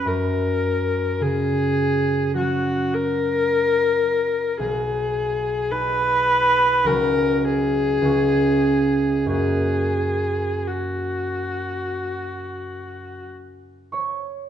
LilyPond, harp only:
\new Staff \with { instrumentName = "Harp" } { \time 4/4 \key fis \major \tempo 4 = 51 << { r1 | r1 | r2. r8 <cis'' cis'''>8 | } \\ { <fis, cis'>4 cis4 <fis cis' fis'>2 | b,,4 <dis' gis'>4 <cis, fis cis' fis'>4 <cis, gis cis' eis'>4 | <fis, ais cis' fis'>1 | } >> }